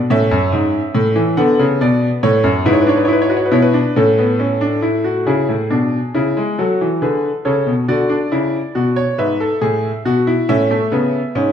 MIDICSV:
0, 0, Header, 1, 2, 480
1, 0, Start_track
1, 0, Tempo, 858369
1, 52, Time_signature, 6, 3, 24, 8
1, 1972, Tempo, 870827
1, 6379, End_track
2, 0, Start_track
2, 0, Title_t, "Grand piano"
2, 0, Program_c, 0, 0
2, 57, Note_on_c, 0, 45, 84
2, 59, Note_on_c, 0, 61, 69
2, 59, Note_on_c, 0, 76, 71
2, 170, Note_off_c, 0, 45, 0
2, 174, Note_on_c, 0, 42, 79
2, 288, Note_off_c, 0, 42, 0
2, 293, Note_on_c, 0, 44, 78
2, 440, Note_off_c, 0, 44, 0
2, 529, Note_on_c, 0, 45, 85
2, 645, Note_off_c, 0, 45, 0
2, 646, Note_on_c, 0, 52, 80
2, 750, Note_off_c, 0, 61, 0
2, 751, Note_off_c, 0, 76, 0
2, 764, Note_off_c, 0, 52, 0
2, 767, Note_on_c, 0, 78, 73
2, 768, Note_on_c, 0, 50, 85
2, 769, Note_on_c, 0, 59, 69
2, 885, Note_off_c, 0, 50, 0
2, 891, Note_on_c, 0, 49, 79
2, 916, Note_off_c, 0, 78, 0
2, 1007, Note_off_c, 0, 49, 0
2, 1012, Note_on_c, 0, 47, 80
2, 1014, Note_on_c, 0, 74, 72
2, 1160, Note_off_c, 0, 47, 0
2, 1162, Note_off_c, 0, 74, 0
2, 1247, Note_on_c, 0, 45, 82
2, 1248, Note_on_c, 0, 73, 75
2, 1362, Note_on_c, 0, 42, 80
2, 1365, Note_off_c, 0, 45, 0
2, 1397, Note_off_c, 0, 73, 0
2, 1468, Note_off_c, 0, 59, 0
2, 1482, Note_off_c, 0, 42, 0
2, 1485, Note_on_c, 0, 71, 63
2, 1486, Note_on_c, 0, 44, 95
2, 1486, Note_on_c, 0, 64, 74
2, 1526, Note_on_c, 0, 73, 62
2, 1531, Note_off_c, 0, 71, 0
2, 1573, Note_on_c, 0, 71, 61
2, 1574, Note_off_c, 0, 73, 0
2, 1603, Note_on_c, 0, 62, 69
2, 1604, Note_off_c, 0, 64, 0
2, 1617, Note_on_c, 0, 73, 67
2, 1620, Note_off_c, 0, 71, 0
2, 1659, Note_on_c, 0, 71, 63
2, 1664, Note_off_c, 0, 73, 0
2, 1705, Note_on_c, 0, 73, 62
2, 1708, Note_off_c, 0, 71, 0
2, 1723, Note_on_c, 0, 64, 69
2, 1724, Note_off_c, 0, 62, 0
2, 1749, Note_on_c, 0, 71, 67
2, 1753, Note_off_c, 0, 73, 0
2, 1798, Note_off_c, 0, 71, 0
2, 1798, Note_on_c, 0, 73, 67
2, 1842, Note_on_c, 0, 71, 63
2, 1844, Note_off_c, 0, 64, 0
2, 1845, Note_off_c, 0, 73, 0
2, 1845, Note_on_c, 0, 66, 67
2, 1882, Note_on_c, 0, 73, 57
2, 1890, Note_off_c, 0, 71, 0
2, 1932, Note_off_c, 0, 73, 0
2, 1932, Note_on_c, 0, 71, 58
2, 1956, Note_off_c, 0, 44, 0
2, 1965, Note_on_c, 0, 47, 81
2, 1966, Note_off_c, 0, 66, 0
2, 1966, Note_on_c, 0, 64, 76
2, 1976, Note_on_c, 0, 73, 64
2, 1979, Note_off_c, 0, 71, 0
2, 2023, Note_off_c, 0, 73, 0
2, 2024, Note_on_c, 0, 71, 76
2, 2085, Note_off_c, 0, 64, 0
2, 2087, Note_on_c, 0, 62, 68
2, 2116, Note_off_c, 0, 47, 0
2, 2206, Note_off_c, 0, 62, 0
2, 2206, Note_off_c, 0, 71, 0
2, 2213, Note_on_c, 0, 45, 82
2, 2214, Note_on_c, 0, 61, 63
2, 2214, Note_on_c, 0, 69, 61
2, 2329, Note_off_c, 0, 61, 0
2, 2334, Note_on_c, 0, 59, 64
2, 2449, Note_off_c, 0, 59, 0
2, 2451, Note_on_c, 0, 61, 66
2, 2567, Note_off_c, 0, 61, 0
2, 2569, Note_on_c, 0, 62, 65
2, 2687, Note_off_c, 0, 62, 0
2, 2687, Note_on_c, 0, 64, 66
2, 2806, Note_off_c, 0, 64, 0
2, 2808, Note_on_c, 0, 66, 61
2, 2912, Note_off_c, 0, 45, 0
2, 2912, Note_off_c, 0, 69, 0
2, 2927, Note_off_c, 0, 66, 0
2, 2930, Note_on_c, 0, 49, 66
2, 2931, Note_on_c, 0, 68, 60
2, 2932, Note_on_c, 0, 64, 57
2, 3049, Note_off_c, 0, 49, 0
2, 3054, Note_on_c, 0, 45, 59
2, 3083, Note_off_c, 0, 64, 0
2, 3171, Note_off_c, 0, 45, 0
2, 3172, Note_on_c, 0, 47, 62
2, 3173, Note_on_c, 0, 62, 55
2, 3323, Note_off_c, 0, 47, 0
2, 3324, Note_off_c, 0, 62, 0
2, 3415, Note_on_c, 0, 49, 64
2, 3415, Note_on_c, 0, 64, 59
2, 3533, Note_off_c, 0, 49, 0
2, 3538, Note_on_c, 0, 56, 64
2, 3565, Note_off_c, 0, 64, 0
2, 3636, Note_off_c, 0, 68, 0
2, 3655, Note_off_c, 0, 56, 0
2, 3658, Note_on_c, 0, 66, 55
2, 3659, Note_on_c, 0, 54, 62
2, 3661, Note_on_c, 0, 69, 50
2, 3775, Note_off_c, 0, 54, 0
2, 3783, Note_on_c, 0, 52, 60
2, 3807, Note_off_c, 0, 66, 0
2, 3809, Note_off_c, 0, 69, 0
2, 3897, Note_off_c, 0, 52, 0
2, 3897, Note_on_c, 0, 50, 62
2, 3897, Note_on_c, 0, 68, 53
2, 3897, Note_on_c, 0, 71, 51
2, 4046, Note_off_c, 0, 50, 0
2, 4046, Note_off_c, 0, 68, 0
2, 4046, Note_off_c, 0, 71, 0
2, 4134, Note_on_c, 0, 69, 58
2, 4136, Note_on_c, 0, 73, 56
2, 4137, Note_on_c, 0, 49, 65
2, 4253, Note_on_c, 0, 47, 62
2, 4254, Note_off_c, 0, 49, 0
2, 4284, Note_off_c, 0, 69, 0
2, 4285, Note_off_c, 0, 73, 0
2, 4372, Note_off_c, 0, 47, 0
2, 4374, Note_on_c, 0, 50, 59
2, 4374, Note_on_c, 0, 66, 69
2, 4374, Note_on_c, 0, 74, 63
2, 4490, Note_on_c, 0, 62, 63
2, 4492, Note_off_c, 0, 66, 0
2, 4523, Note_off_c, 0, 50, 0
2, 4608, Note_off_c, 0, 62, 0
2, 4612, Note_on_c, 0, 64, 63
2, 4614, Note_on_c, 0, 49, 57
2, 4761, Note_off_c, 0, 64, 0
2, 4762, Note_off_c, 0, 49, 0
2, 4851, Note_on_c, 0, 66, 67
2, 4853, Note_on_c, 0, 47, 59
2, 4968, Note_off_c, 0, 66, 0
2, 4969, Note_on_c, 0, 73, 70
2, 5001, Note_off_c, 0, 47, 0
2, 5069, Note_off_c, 0, 74, 0
2, 5087, Note_off_c, 0, 73, 0
2, 5090, Note_on_c, 0, 71, 70
2, 5091, Note_on_c, 0, 44, 60
2, 5093, Note_on_c, 0, 76, 59
2, 5207, Note_off_c, 0, 71, 0
2, 5212, Note_on_c, 0, 69, 64
2, 5240, Note_off_c, 0, 44, 0
2, 5328, Note_on_c, 0, 45, 61
2, 5328, Note_on_c, 0, 68, 74
2, 5329, Note_off_c, 0, 69, 0
2, 5479, Note_off_c, 0, 45, 0
2, 5479, Note_off_c, 0, 68, 0
2, 5569, Note_on_c, 0, 47, 59
2, 5570, Note_on_c, 0, 66, 76
2, 5688, Note_off_c, 0, 66, 0
2, 5689, Note_on_c, 0, 64, 70
2, 5720, Note_off_c, 0, 47, 0
2, 5792, Note_off_c, 0, 76, 0
2, 5808, Note_off_c, 0, 64, 0
2, 5809, Note_on_c, 0, 61, 79
2, 5810, Note_on_c, 0, 45, 67
2, 5811, Note_on_c, 0, 76, 70
2, 5928, Note_off_c, 0, 61, 0
2, 5930, Note_on_c, 0, 57, 72
2, 5959, Note_off_c, 0, 45, 0
2, 6046, Note_on_c, 0, 49, 64
2, 6046, Note_on_c, 0, 59, 74
2, 6048, Note_off_c, 0, 57, 0
2, 6196, Note_off_c, 0, 49, 0
2, 6196, Note_off_c, 0, 59, 0
2, 6285, Note_on_c, 0, 44, 70
2, 6286, Note_on_c, 0, 61, 79
2, 6379, Note_off_c, 0, 44, 0
2, 6379, Note_off_c, 0, 61, 0
2, 6379, Note_off_c, 0, 76, 0
2, 6379, End_track
0, 0, End_of_file